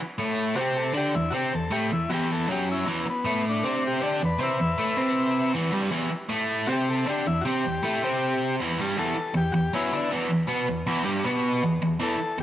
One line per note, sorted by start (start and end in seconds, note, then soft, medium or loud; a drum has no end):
0.00 muted overdriven electric guitar stroke medium
0.18 0.55 A2 loud
0.18 0.56 A3 loud
0.55 0.93 C3 medium
0.55 0.94 C4 loud
0.55 0.58 F#4 medium
0.61 0.78 G4 loud
0.76 0.95 A4 medium
0.93 1.13 D3 medium
0.93 1.14 D4 loud
0.93 1.15 G4 medium
1.14 1.30 E2 medium
1.14 1.34 E4 medium
1.30 1.52 C3 medium
1.30 1.52 C4 medium
1.30 1.33 F#4 medium
1.35 1.53 G4 loud
1.52 1.68 E2 medium
1.52 1.73 A4 medium
1.71 1.90 A2 loud
1.71 1.91 A3 loud
1.71 1.91 G4 medium
1.91 2.06 E2 medium
1.91 2.11 E4 medium
2.09 2.47 E2 medium
2.09 2.49 E3 medium
2.09 2.11 F#4 medium
2.14 2.31 G4 loud
2.32 2.50 A4 medium
2.48 2.86 F#2 medium
2.48 2.87 F#3 loud
2.52 2.69 G4 medium
2.72 2.88 E4 medium
2.86 3.05 E2 medium
2.86 3.06 E3 loud
3.06 3.07 A#3 medium
3.06 muted overdriven electric guitar stroke medium
3.10 3.45 B3 medium
3.25 3.63 A2 loud
3.25 3.63 A3 loud
3.49 3.84 D4 medium
3.64 4.01 C3 medium
3.64 4.02 C4 medium
3.87 4.22 G4 medium
4.02 4.20 D3 medium
4.02 4.21 D4 loud
4.21 4.36 E2 medium
4.25 4.41 B4 medium
4.39 4.58 C3 medium
4.39 4.59 C4 loud
4.39 5.52 B4 medium
4.43 5.53 E5 loud
4.59 4.74 E2 medium
4.78 4.97 A2 medium
4.78 4.97 A3 loud
4.97 5.54 C3 medium
4.97 5.54 C4 loud
5.54 5.72 E2 medium
5.54 5.73 E3 loud
5.72 5.91 G2 medium
5.72 5.92 G3 loud
5.91 6.10 E2 medium
5.91 6.11 E3 loud
6.11 muted overdriven electric guitar stroke medium
6.29 6.67 A2 loud
6.29 6.68 A3 loud
6.67 7.06 C3 loud
6.67 7.06 C4 loud
6.67 6.69 F#4 medium
6.72 6.89 G4 loud
6.90 7.07 A4 medium
7.06 7.25 D3 loud
7.06 7.25 D4 loud
7.06 7.27 G4 medium
7.25 7.41 E2 medium
7.25 7.45 E4 medium
7.41 7.63 C3 medium
7.41 7.44 F#4 medium
7.41 8.56 G4 loud
7.46 7.64 C4 loud
7.63 7.79 E2 medium
7.82 8.01 A2 medium
7.82 8.02 A3 loud
8.02 8.59 C3 medium
8.02 8.59 C4 loud
8.60 8.78 E2 medium
8.60 8.79 E3 loud
8.79 8.97 G2 medium
8.79 8.98 G3 loud
8.97 9.15 E2 medium
8.97 9.16 E3 loud
8.97 9.35 A4 loud
9.16 muted overdriven electric guitar stroke medium
9.34 9.50 E2 medium
9.34 9.54 G4 medium
9.52 9.69 E2 medium
9.52 9.54 F#4 medium
9.52 9.73 G4 medium
9.73 9.92 F#2 medium
9.73 9.92 F#3 loud
9.73 10.09 B3 medium
9.73 10.11 E4 medium
9.92 10.10 D3 medium
9.92 10.11 D4 medium
10.11 10.28 E2 loud
10.11 10.30 E3 loud
10.29 10.45 E2 medium
10.47 10.67 B2 medium
10.47 10.67 B3 loud
10.67 10.83 E2 medium
10.86 11.03 E2 medium
10.86 11.04 E3 loud
11.04 11.23 G2 medium
11.04 11.24 G3 loud
11.25 11.62 B2 medium
11.25 11.63 B3 loud
11.63 11.78 E2 medium
11.82 11.97 E2 medium
12.00 12.17 E2 medium
12.00 12.19 E3 loud
12.00 12.38 A4 loud
12.19 muted overdriven electric guitar stroke medium
12.38 12.43 E2 medium